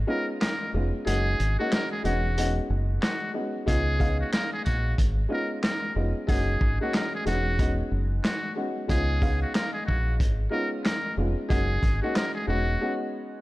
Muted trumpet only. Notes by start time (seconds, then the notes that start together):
0.09 A#4
0.41 A#4
1.06 G#4
1.59 F#4
1.73 A#4
1.92 G#4
2.05 F#4
3.01 F#4
3.68 G#4
4.20 F#4
4.33 A#4
4.53 G#4
4.65 F#4
5.33 A#4
5.63 A#4
6.29 G#4
6.81 F#4
6.95 A#4
7.15 G#4
7.27 F#4
8.24 F#4
8.90 G#4
9.42 F#4
9.55 A#4
9.73 G#4
9.86 F#4
10.52 A#4
10.84 A#4
11.49 G#4
12.02 F#4
12.16 A#4
12.35 G#4
12.48 F#4